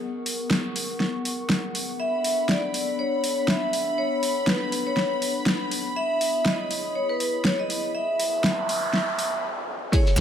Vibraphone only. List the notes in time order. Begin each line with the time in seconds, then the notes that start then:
2.00 E5
2.49 D5
2.99 C#5
3.48 E5
3.98 C#5
4.48 B4
4.87 C#5
5.96 E5
6.46 D#5
6.95 C#5
7.09 B4
7.45 C#5
7.59 D#5
7.95 E5
9.93 C#5